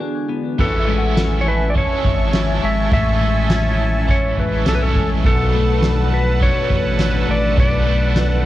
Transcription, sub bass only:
0.59 1.86 A1 loud
2.04 2.60 G#1 medium
2.63 2.90 G#1 loud
2.92 4.33 A1 loud
4.38 4.65 A1 loud
4.66 4.94 B1 medium
4.96 5.23 A1 medium
5.25 6.52 B1 loud
6.71 7.26 A1 medium
7.28 7.56 A1 medium
7.57 8.46 B1 loud

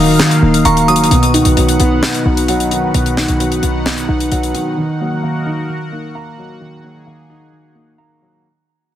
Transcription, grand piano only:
0.00 0.42 D#3 medium
0.00 0.88 F#3 medium
0.00 0.65 A#3 medium
0.00 0.42 D#4 loud
0.42 1.11 D#4 medium
0.65 1.11 A#3 medium
0.88 1.11 F#3 medium
1.11 2.26 B2 medium
1.34 2.48 D#3 medium
1.57 2.47 F#3 medium
1.80 2.24 B3 loud
2.26 3.40 B3 medium
2.49 3.39 F#3 medium
2.71 3.16 D#3 medium
2.94 4.09 B2 medium
3.17 4.32 D#3 medium
3.40 4.30 F#3 medium
3.63 4.07 B3 loud
4.09 4.77 B3 medium
4.32 4.77 F#3 medium
4.54 4.76 D#3 medium
4.77 5.92 D#3 medium
5.00 6.15 F#3 medium
5.23 6.13 A#3 medium
5.46 5.91 D#4 medium
5.92 7.07 D#4 medium
6.15 7.05 A#3 medium
6.38 6.82 F#3 medium
6.61 7.75 D#3 medium
6.84 7.98 F#3 medium
7.07 7.97 A#3 medium
7.30 7.74 D#4 loud
7.75 8.44 D#4 medium
7.98 8.44 A#3 medium
8.21 8.44 F#3 medium

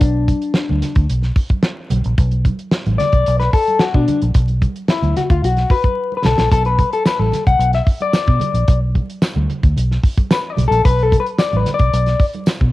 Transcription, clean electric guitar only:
0.00 1.04 D4 medium
2.98 3.39 D5 loud
3.39 3.53 B4 medium
3.53 3.82 A4 medium
3.80 3.94 F#4 medium
3.94 4.20 D4 medium
4.90 5.15 E4 medium
5.17 5.22 F#4 medium
5.31 5.44 F4 medium
5.45 5.69 F#4 medium
5.71 6.16 B4 medium
6.17 6.24 B4 medium
6.26 6.51 A4 medium
6.53 6.66 A4 loud
6.66 6.93 B4 medium
6.93 7.06 A4 medium
7.07 7.19 B4 medium
7.19 7.47 A4 medium
7.47 7.74 F#5 loud
7.75 7.82 E5 medium
8.02 8.79 D5 medium
10.32 10.37 B4 medium
10.50 10.67 D5 loud
10.68 10.85 A4 medium
10.85 11.03 B4 loud
11.03 11.20 A4 medium
11.20 11.25 B4 medium
11.39 11.57 D5 medium
11.57 11.74 B4 medium
11.74 12.25 D5 loud

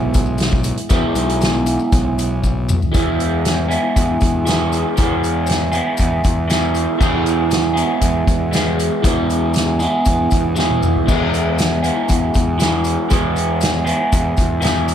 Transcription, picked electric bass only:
0.00 0.71 B1 medium
0.90 1.01 E2 loud
1.15 1.77 B1 loud
1.92 2.74 B1 medium
2.94 3.76 E2 medium
3.97 4.17 E2 medium
4.22 4.83 E2 medium
4.98 5.79 E2 medium
5.99 6.20 E2 medium
6.25 6.86 E2 medium
7.00 7.82 E2 medium
8.01 8.22 E2 medium
8.27 8.89 E2 medium
9.03 9.85 E2 loud
10.07 10.27 E2 medium
10.31 10.92 E2 medium
11.08 11.89 E2 medium
12.09 12.29 E2 loud
12.35 12.96 E2 medium
13.11 13.92 E2 loud
14.13 14.32 E2 loud
14.38 14.95 E2 medium

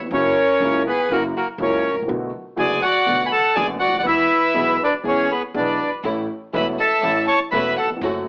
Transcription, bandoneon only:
0.13 0.82 C#4 medium
0.13 0.83 C#5 medium
0.87 1.09 B3 soft
0.87 1.13 B4 medium
1.11 1.22 A#3 medium
1.11 1.23 A#4 medium
1.36 1.47 A#3 medium
1.36 1.48 A#4 medium
1.62 1.95 C#4 soft
1.62 1.95 C#5 medium
2.59 2.81 G#4 medium
2.59 2.84 G#5 medium
2.82 3.23 F#4 medium
2.82 3.27 F#5 medium
3.26 3.32 B5 medium
3.32 3.55 A4 medium
3.32 3.57 A5 medium
3.55 3.67 G#4 medium
3.55 3.67 G#5 medium
3.79 3.97 F#4 medium
3.79 3.97 F#5 medium
3.99 4.06 F#5 medium
4.07 4.77 E4 medium
4.07 4.83 E5 medium
4.83 4.94 D4 medium
4.83 4.94 D5 medium
5.08 5.30 C#4 medium
5.08 5.32 C#5 medium
5.32 5.42 B3 soft
5.32 5.42 B4 medium
5.56 5.90 D4 soft
5.56 5.90 D5 medium
6.54 6.65 B4 soft
6.54 6.67 B5 medium
6.79 7.25 A4 medium
6.79 7.25 A5 medium
7.28 7.39 C#5 medium
7.28 7.39 C#6 medium
7.51 7.75 B4 medium
7.51 7.75 B5 medium
7.78 7.90 A4 soft
7.78 7.89 A5 medium

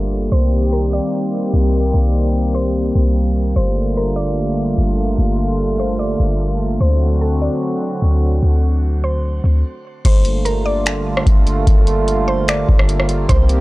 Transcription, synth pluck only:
0.00 0.28 D5 medium
0.32 0.70 C5 loud
0.72 0.92 A#4 medium
0.93 1.90 D5 medium
2.55 3.52 C5 medium
3.56 3.94 C5 loud
3.97 4.16 A#4 medium
4.16 5.14 D5 medium
5.80 5.99 C5 medium
5.99 6.76 D5 medium
6.81 7.19 C5 loud
7.21 7.40 A4 medium
7.42 8.39 D5 medium
9.04 10.01 C5 medium
10.05 10.43 C5 loud
10.45 10.65 A#4 medium
10.66 11.63 D5 medium
12.28 12.47 C5 medium
12.49 13.25 D5 medium
13.29 13.61 C5 loud

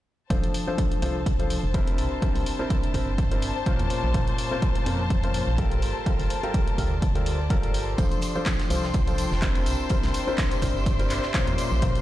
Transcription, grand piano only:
0.30 0.64 F3 medium
0.30 0.64 D4 medium
0.30 0.64 F4 medium
0.30 0.64 A4 medium
0.30 0.64 C5 medium
0.67 1.00 F3 medium
0.67 1.00 D4 medium
0.67 1.00 F4 medium
0.67 1.00 A4 medium
0.67 1.00 C5 medium
1.02 1.17 F3 medium
1.02 1.17 D4 medium
1.02 1.17 F4 medium
1.02 1.17 A4 medium
1.02 1.17 C5 medium
1.39 1.61 F3 medium
1.39 1.61 D4 medium
1.39 1.61 F4 medium
1.39 1.61 A4 medium
1.39 1.61 C5 medium
1.74 2.20 C3 medium
1.74 2.20 D4 medium
1.74 2.20 E4 medium
1.74 2.20 A#4 medium
1.74 2.20 C5 loud
2.22 2.56 C3 medium
2.22 2.56 D4 medium
2.22 2.56 E4 medium
2.22 2.56 A#4 medium
2.22 2.56 C5 medium
2.59 2.92 C3 medium
2.59 2.92 D4 medium
2.59 2.92 E4 medium
2.59 2.92 A#4 medium
2.59 2.92 C5 medium
2.94 3.09 C3 medium
2.94 3.09 D4 medium
2.94 3.09 E4 medium
2.94 3.09 A#4 medium
2.94 3.09 C5 medium
3.31 3.53 C3 medium
3.31 3.53 D4 medium
3.31 3.53 E4 medium
3.31 3.53 A#4 medium
3.31 3.53 C5 medium
3.66 4.12 A#2 medium
3.66 4.12 C#4 medium
3.66 4.12 F4 medium
3.66 4.12 A#4 medium
3.66 4.12 C5 loud
4.14 4.48 A#2 medium
4.14 4.48 C#4 medium
4.14 4.48 F4 medium
4.14 4.48 A#4 medium
4.14 4.48 C5 medium
4.51 4.84 A#2 medium
4.51 4.84 C#4 medium
4.51 4.84 F4 medium
4.51 4.84 A#4 medium
4.51 4.84 C5 medium
4.86 5.01 A#2 medium
4.86 5.01 C#4 medium
4.86 5.01 F4 medium
4.86 5.01 A#4 medium
4.86 5.01 C5 medium
5.23 5.45 A#2 medium
5.23 5.45 C#4 medium
5.23 5.45 F4 medium
5.23 5.45 A#4 medium
5.23 5.45 C5 medium
5.58 6.04 G3 medium
5.58 6.04 F4 medium
5.58 6.04 G4 medium
5.58 6.04 A4 medium
5.58 6.04 A#4 loud
6.06 6.40 G3 medium
6.06 6.40 F4 medium
6.06 6.40 G4 medium
6.06 6.40 A4 medium
6.06 6.40 A#4 medium
6.43 6.76 G3 medium
6.43 6.76 F4 medium
6.43 6.76 G4 medium
6.43 6.76 A4 medium
6.43 6.76 A#4 medium
6.78 6.93 G3 medium
6.78 6.93 F4 medium
6.78 6.93 G4 medium
6.78 6.93 A4 medium
6.78 6.93 A#4 medium
7.15 7.37 G3 medium
7.15 7.37 F4 medium
7.15 7.37 G4 medium
7.15 7.37 A4 medium
7.15 7.37 A#4 medium
7.50 7.96 G3 medium
7.50 7.96 F4 medium
7.50 7.96 G4 medium
7.50 7.96 A4 medium
7.50 7.96 A#4 loud
7.98 8.32 F3 medium
7.98 8.32 D4 medium
7.98 8.32 F4 medium
7.98 8.32 A4 medium
7.98 8.32 C5 medium
8.35 8.68 F3 medium
8.35 8.68 D4 medium
8.35 8.68 F4 medium
8.35 8.68 A4 medium
8.35 8.68 C5 medium
8.70 8.85 F3 medium
8.70 8.85 D4 medium
8.70 8.85 F4 medium
8.70 8.85 A4 medium
8.70 8.85 C5 medium
9.07 9.29 F3 medium
9.07 9.29 D4 medium
9.07 9.29 F4 medium
9.07 9.29 A4 medium
9.07 9.29 C5 medium
9.42 9.88 C3 medium
9.42 9.88 D4 medium
9.42 9.88 E4 medium
9.42 9.88 A#4 medium
9.42 9.88 C5 loud
9.90 10.24 C3 medium
9.90 10.24 D4 medium
9.90 10.24 E4 medium
9.90 10.24 A#4 medium
9.90 10.24 C5 medium
10.27 10.60 C3 medium
10.27 10.60 D4 medium
10.27 10.60 E4 medium
10.27 10.60 A#4 medium
10.27 10.60 C5 medium
10.62 10.77 C3 medium
10.62 10.77 D4 medium
10.62 10.77 E4 medium
10.62 10.77 A#4 medium
10.62 10.77 C5 medium
10.99 11.21 C3 medium
10.99 11.21 D4 medium
10.99 11.21 E4 medium
10.99 11.21 A#4 medium
10.99 11.21 C5 medium
11.34 11.80 A#2 medium
11.34 11.80 C#4 medium
11.34 11.80 F4 medium
11.34 11.80 A#4 medium
11.34 11.80 C5 loud
11.82 12.02 A#2 medium
11.82 12.02 C#4 medium
11.82 12.02 F4 medium
11.82 12.02 A#4 medium
11.82 12.02 C5 medium

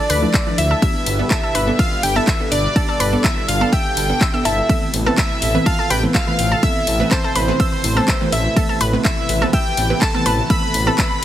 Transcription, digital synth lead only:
0.00 0.60 D5 loud
0.58 1.30 E5 loud
1.31 1.80 E5 loud
1.79 2.05 F5 loud
2.03 2.18 G5 loud
2.16 2.51 E5 loud
2.52 3.26 D5 loud
3.24 3.50 E5 loud
3.48 3.74 F5 loud
3.72 4.46 G5 loud
4.45 4.93 E5 medium
5.18 5.68 E5 loud
5.66 5.90 F5 loud
5.91 6.01 G5 loud
6.15 6.65 F5 loud
6.63 7.13 E5 loud
7.12 8.34 C5 loud
8.32 8.81 E5 medium
9.05 9.50 E5 medium
9.53 10.03 G5 loud
10.02 10.52 A5 loud
10.50 11.24 B5 loud

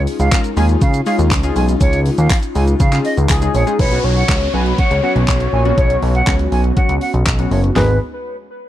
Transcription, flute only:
0.20 0.39 F5 medium
0.57 0.66 G#5 medium
0.82 1.01 F5 medium
1.06 1.16 F5 medium
1.56 1.65 G#5 medium
1.81 2.00 C#5 loud
2.18 2.37 F5 medium
2.55 2.65 G#5 medium
2.80 2.99 F5 medium
3.05 3.14 D#5 medium
3.54 3.64 C#5 medium
3.79 3.98 C#5 loud
4.16 4.35 F#5 medium
4.54 4.63 G#5 medium
4.78 4.97 F#5 medium
5.03 5.13 F#5 medium
5.53 5.62 G#5 medium
5.78 5.97 C#5 loud
6.15 6.34 F#5 medium
6.52 6.61 G#5 medium
6.76 6.95 F#5 medium
7.01 7.11 F#5 medium
7.51 7.60 C#5 medium
7.76 7.99 B4 medium

